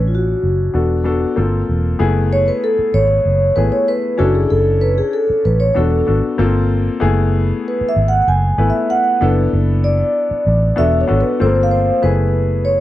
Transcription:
Already playing: A1 C#4 D4 E4 A4
0.08 F4
0.15 F#4
0.43 F#1
0.74 E1 B3 D4 F#4 A4
1.04 B3 D4 F#4 A4
1.36 G1 A#3 C4 F4 A4
1.69 E1
1.99 F#1 A3 B3 E4 G#4
2.33 C#5
2.48 B4
2.64 A4
2.79 muted fingered electric bass stroke
2.94 G#1 C#5
3.25 F#1
3.56 G#1 A3 B3 E4 G#4 B4
3.72 C#5
3.88 B4
4.18 F#1 C#4 D4 E4 F#4 A4
4.35 G#4
4.50 F#1 A4
4.81 B4
4.98 G#4
5.13 A4
5.30 muted fingered electric bass stroke
5.45 A1 B4
5.60 C#5
5.74 E1 B3 D4 F#4 A4
6.07 G#1 B3 D4 F#4 A4
6.38 G1 A#3 C4 F4 A4
7.00 F#1 A3 B3 E4 G#4
7.68 B4
7.81 muted fingered electric bass stroke
7.89 E5
7.96 G#1
8.08 F#5
8.28 F#1 G#5
8.58 G#1 A3 B3 E4 B4
8.70 E5
8.90 F#5
9.21 F#1 B3 D4 E4 A4 B4
9.53 F#1
9.84 D5
10.31 muted fingered electric bass stroke
10.47 A1
10.76 E1 B3 D4 F#4 A4 E5
11.01 C#5
11.08 G#1 B3 D4 F#4 A4
11.21 B4
11.39 G1 A3 C4 F4 A4 C5
11.46 A#3
11.63 F5
11.71 C5
12.02 F#1 A3 B3 E4 G#4 B4
12.65 C#5

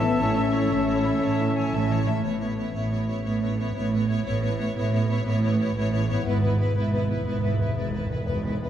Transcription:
Already playing: A1 A2 E4 A4 E5 A5
0.00 E3 A3 B3 C#4 B4 E5
0.18 A1 A2 C#4 E4 C#5
0.28 E3
0.35 A3 C#4 E5
0.46 E4
0.53 C#4 E4 A4 C#5
0.63 E4
0.71 A1 A2 A3 C#4 E5 A5
0.80 A5
0.88 C#4 E4 C#5
0.98 A5
1.05 A3 C#4 E5 B5
1.15 A5
1.22 A1 A2 C#4 E4 C#5 E5 A5
1.32 A4
1.39 A3 C#4 E4 E5
1.49 A3
1.56 E3 C#4 E4 C#5 G#5
1.66 A3
1.73 A1 A2 E3 A3 C#4 E5 A5
1.83 A3
1.91 E3 C#4 E4 C#5
2.00 A3
2.06 A2 E3 A3 C#4 E5 A5
2.11 C#4
2.16 A3 E4
2.21 A1 B4
2.25 A2 B3 E4 C#5
2.41 B3 E4 C#5
2.58 B3 E4 C#5
2.75 A1 A2 B3 E4 C#5
2.91 B3 E4 C#5
3.08 B3 E4 C#5
3.24 A1 A2 B3 E4 C#5
3.42 B3 E4 C#5
3.58 B3 E4 C#5
3.75 A1 A2 B3 E4 C#5
3.92 B3 E4 C#5
4.06 E4 C#5
4.11 B3
4.22 E4 C#5
4.26 A1 A2 B3
4.40 B3 E4 C#5
4.57 B3 E4 C#5
4.75 A1 A2 B3 E4 C#5
4.92 B3 E4 C#5
5.08 B3 E4 C#5
5.25 A1 A2 B3 E4 C#5
5.42 B3 E4 C#5
5.59 B3 E4 C#5
5.76 A1 A2 B3 E4 C#5
5.92 B3 E4 C#5
6.08 G#2 B3 E4 C#5
6.13 B3
6.18 E4
6.22 B3 E4 B4
6.27 G#1 E2 G#2 B4
6.34 E2
6.41 E2 B3 E4 B4
6.49 E2
6.56 E2 B3
6.60 E2 E4 B4
6.70 E2
6.76 G#1 E2 G#2 B3 E4 B4
6.85 E2
6.92 E2 B3 E4 B4
7.01 E2
7.08 E2 B3 E4 B4
7.16 E2
7.23 G#1 E2 G#2 B3 E4 B4
7.30 E2
7.38 E2
7.43 E2 B3 E4 B4
7.54 E2
7.58 E2 B3 E4 B4
7.68 E2
7.76 G#1 E2 G#2 B3 E4 B4
7.83 E2
7.90 E2 B3 B4
7.95 E2 E4
8.06 E2
8.10 E2 B3 E4 B4
8.20 E2
8.26 G#1 E2 G#2 B3 E4 B4
8.36 E2
8.43 E2 B3 E4 B4
8.51 E2
8.58 E2 B3
8.62 E4 B4

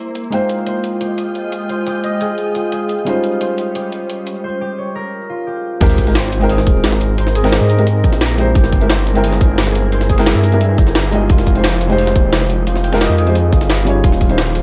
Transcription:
Already playing: G3 G#3 A#3 C4 E4 G4 A#4 C5
0.15 closed hi-hat, shaker
0.24 shaker
0.30 G#3 D#4 F4 D#5 G5, closed hi-hat
0.34 C5
0.49 closed hi-hat, shaker
0.58 shaker
0.67 C5, closed hi-hat
0.84 closed hi-hat, shaker
1.01 G4, closed hi-hat
1.18 closed hi-hat, shaker
1.35 closed hi-hat, shaker
1.52 closed hi-hat, shaker
1.61 shaker
1.69 C5, closed hi-hat
1.87 G4, closed hi-hat, shaker
1.95 shaker
2.04 D#5, closed hi-hat
2.21 G#4, closed hi-hat, shaker
2.38 closed hi-hat
2.55 F4, closed hi-hat, shaker
2.72 G#4, closed hi-hat, shaker
2.89 closed hi-hat, shaker
2.98 shaker
3.05 G3 C#4 D#4 F4 C5, closed hi-hat
3.24 closed hi-hat, shaker
3.32 shaker
3.41 C5, closed hi-hat
3.58 closed hi-hat, shaker
3.75 G4, closed hi-hat
3.92 closed hi-hat, shaker
4.10 closed hi-hat, shaker
4.27 closed hi-hat, shaker
4.35 shaker
4.44 C5
4.61 G4
4.78 C#5
4.95 A#4
5.30 F4
5.47 G4
5.80 G#1 G#3 C4 D#4 G4 A#4, kick, closed hi-hat, crash, sub drop
5.90 snare, closed hi-hat
5.98 kick, closed hi-hat, shaker
6.06 G#3 C4 D#4 G4 A#4, closed hi-hat
6.15 C5, snare, closed hi-hat
6.24 closed hi-hat
6.32 closed hi-hat, shaker
6.39 G#3 C4 D#4 G5, closed hi-hat
6.43 A#4
6.49 G#4, closed hi-hat, open hi-hat
6.58 snare
6.67 D#1, kick, closed hi-hat, shaker
6.84 G#1, snare, closed hi-hat, shaker
6.92 snare
7.01 closed hi-hat, shaker
7.18 G#1 C5, closed hi-hat
7.27 snare
7.35 G#4, closed hi-hat, shaker
7.43 G#1 G#3 C4 D#4 A#4 G5, snare
7.52 D#5, snare, closed hi-hat
7.61 G#2
7.69 A#4, closed hi-hat, shaker
7.77 G#3 C4 D#4 G4 A#4, closed hi-hat
7.87 closed hi-hat
8.04 A#1 G4, kick, closed hi-hat, shaker
8.13 snare, closed hi-hat
8.21 A#4, snare, closed hi-hat, shaker
8.36 G#3 C4 E4 G4 C5, closed hi-hat, shaker
8.55 G1 E4 G4 G#4, kick, closed hi-hat
8.64 snare, closed hi-hat
8.72 kick, closed hi-hat, shaker
8.80 G#3 C4 E4 G4 A#4, closed hi-hat
8.90 C5, snare, closed hi-hat
8.98 closed hi-hat
9.07 closed hi-hat, shaker
9.13 G#3 C4 E4 G5, closed hi-hat
9.17 A#4
9.24 G#4, closed hi-hat, open hi-hat
9.32 snare
9.41 G1, kick, closed hi-hat, shaker
9.58 G1, snare, closed hi-hat, shaker
9.67 snare
9.75 closed hi-hat, shaker
9.92 G1 C5, closed hi-hat
10.01 snare
10.09 G#4, kick, closed hi-hat, shaker
10.17 G1 G#3 C4 E4 A#4 G5, snare
10.26 E5, snare, closed hi-hat
10.35 G2
10.44 A#4, closed hi-hat, shaker
10.52 G#3 C4 E4 G4 A#4, closed hi-hat
10.61 closed hi-hat
10.78 G1 G4, kick, closed hi-hat, shaker
10.87 snare, closed hi-hat
10.95 A#4, snare, closed hi-hat, shaker
11.11 G#3 D#4 F4 G4 D#5, closed hi-hat, shaker
11.30 F1 D#4 F4, kick, closed hi-hat
11.38 snare, closed hi-hat
11.47 kick, closed hi-hat, shaker
11.55 G#3 D#4 F4 G4 C5, closed hi-hat
11.64 C5, snare, closed hi-hat
11.73 closed hi-hat
11.81 closed hi-hat, shaker
11.88 G#3 D#4 F4 G4, closed hi-hat
11.92 C5
11.98 G4, closed hi-hat, open hi-hat
12.07 snare
12.15 D#1, kick, closed hi-hat, shaker
12.33 F1, snare, closed hi-hat, shaker
12.41 snare
12.50 closed hi-hat, shaker
12.67 F1 F4, closed hi-hat
12.76 snare
12.84 G4, closed hi-hat, shaker
12.92 F1 G#3 D#4 F4 G4 A#4, snare
13.01 D#5, snare, closed hi-hat
13.10 F2
13.18 G#4, closed hi-hat, shaker
13.26 G#3 D#4 F4 G4 C5, closed hi-hat
13.35 closed hi-hat
13.52 G1 F4, kick, closed hi-hat, shaker
13.61 snare, closed hi-hat
13.70 G#4, snare, closed hi-hat, shaker
13.85 G3 C#4 D#4 F4, closed hi-hat, shaker
13.89 C#5
14.04 D#1 F3 C#4 F4 G4, kick, closed hi-hat
14.12 snare, closed hi-hat
14.21 kick, closed hi-hat, shaker
14.29 G3 C#4 D#4 F4 C5, closed hi-hat
14.38 C5, snare, closed hi-hat
14.47 closed hi-hat
14.55 closed hi-hat, shaker

